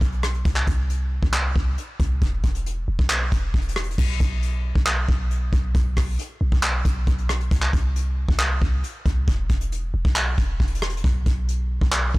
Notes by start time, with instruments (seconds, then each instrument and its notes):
0.01 808-style bass B1, kick, closed hi-hat
0.12 closed hi-hat
0.23 cross-stick, closed hi-hat
0.34 closed hi-hat
0.45 808-style bass C2, kick, closed hi-hat
0.56 clap
0.67 808-style bass C2, kick, closed hi-hat
0.90 closed hi-hat
1.23 808-style bass C2, kick
1.33 clap, closed hi-hat
1.56 808-style bass C2, kick
1.78 closed hi-hat
2.00 808-style bass C2, kick, closed hi-hat
2.22 808-style bass E1, kick, closed hi-hat
2.44 808-style bass E1, kick, closed hi-hat, open hi-hat
2.55 closed hi-hat
2.66 closed hi-hat
2.88 808-style bass E1
2.99 808-style bass B1, kick
3.10 clap, closed hi-hat
3.32 808-style bass E1, kick, closed hi-hat
3.54 808-style bass E1, kick, closed hi-hat
3.62 closed hi-hat
3.69 closed hi-hat
3.76 cross-stick
3.83 closed hi-hat
3.91 closed hi-hat
3.98 808-style bass B1, kick, crash
4.20 808-style bass B1, kick, closed hi-hat
4.43 closed hi-hat
4.75 808-style bass B1, kick
4.86 clap, closed hi-hat
5.09 808-style bass B1, kick
5.31 closed hi-hat
5.53 808-style bass B1, kick, closed hi-hat
5.75 808-style bass B1, kick, closed hi-hat
5.97 808-style bass B1, kick, cross-stick, open hi-hat
6.19 closed hi-hat
6.41 808-style bass B1
6.52 808-style bass B1, kick
6.63 clap, closed hi-hat
6.85 808-style bass B1, kick, closed hi-hat
7.07 808-style bass B1, kick, closed hi-hat
7.18 closed hi-hat
7.29 cross-stick, closed hi-hat
7.40 closed hi-hat
7.51 808-style bass C2, kick, closed hi-hat
7.62 clap
7.73 808-style bass C2, kick, closed hi-hat
7.96 closed hi-hat
8.29 808-style bass C2, kick
8.39 clap, closed hi-hat
8.62 808-style bass C2, kick
8.84 closed hi-hat
9.06 808-style bass C2, kick, closed hi-hat
9.28 808-style bass E1, kick, closed hi-hat
9.50 808-style bass E1, kick, closed hi-hat, open hi-hat
9.61 closed hi-hat
9.72 closed hi-hat
9.94 808-style bass E1
10.05 808-style bass B1, kick
10.16 clap, closed hi-hat
10.38 808-style bass E1, kick, closed hi-hat
10.60 808-style bass E1, kick, closed hi-hat
10.67 closed hi-hat
10.75 closed hi-hat
10.82 cross-stick, closed hi-hat
10.90 closed hi-hat
10.97 closed hi-hat
11.04 808-style bass B1, kick, closed hi-hat
11.26 808-style bass B1, kick, closed hi-hat
11.49 closed hi-hat
11.81 808-style bass B1, kick
11.92 clap, closed hi-hat
12.14 808-style bass B1, kick